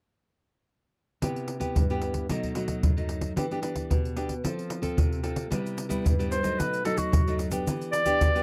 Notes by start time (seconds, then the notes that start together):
1.22 C3 B3 E4 G4, pandeiro, surdo
1.36 pandeiro
1.48 pandeiro
1.60 B3 E4 G4, pandeiro, surdo
1.75 G2, pandeiro, surdo
1.90 B3 E4 G4, pandeiro
2.02 pandeiro
2.14 pandeiro, surdo
2.29 B2 F#3 A3 D#4, pandeiro, surdo
2.43 pandeiro, surdo
2.55 F#3 A3 D#4, pandeiro
2.68 pandeiro, surdo
2.83 F#2, pandeiro, surdo
2.97 F#3 A3 D#4, pandeiro
3.09 pandeiro
3.21 pandeiro, surdo
3.36 E3 B3 D4 G4, pandeiro, surdo
3.51 B3 D4 G4, pandeiro
3.62 B3 D4 G4, pandeiro
3.76 pandeiro, surdo
3.90 B2, pandeiro, surdo
4.05 pandeiro
4.16 B3 D4 G4, pandeiro
4.29 pandeiro, surdo
4.44 F3 C4 F4 A4, pandeiro, surdo
4.59 pandeiro
4.70 pandeiro
4.82 C4 F4 A4, pandeiro, surdo
4.97 C3, pandeiro, surdo
5.12 pandeiro
5.23 C4 F4 A4, pandeiro
5.36 pandeiro, surdo
5.50 C3 G3 B3 E4, pandeiro, shaker, surdo
5.66 pandeiro, shaker
5.78 pandeiro, shaker
5.89 G3 B3 E4, pandeiro, shaker, surdo
6.04 G2, pandeiro, shaker, surdo
6.19 G3 B3 E4, pandeiro, shaker
6.32 C5, pandeiro, shaker
6.43 F#3 A3 D#4, pandeiro, shaker, surdo
6.58 B2 B4, pandeiro, shaker, surdo
6.74 pandeiro, shaker
6.85 F#3 A3 D#4 A4, pandeiro
6.98 F#4, pandeiro, shaker, surdo
7.12 F#2, pandeiro, shaker, surdo
7.27 F#3 A3 D#4, pandeiro, shaker
7.39 pandeiro, shaker
7.51 B3 D4 G4, pandeiro, shaker, surdo
7.67 E3, pandeiro, shaker, surdo
7.82 pandeiro, shaker
7.92 D5, pandeiro, shaker
8.05 B3 D4 G4, pandeiro, shaker, surdo
8.21 B2, pandeiro, shaker, surdo
8.35 B3 D4 G4, pandeiro, shaker